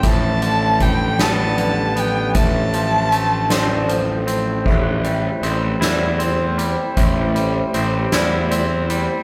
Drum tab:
CC |------|------|x-----|------|
HH |xxxxxx|xxxxxx|-xxxxx|xxxxxx|
SD |---o--|---o--|---o--|---o--|
BD |o-o---|o-----|o-----|o-----|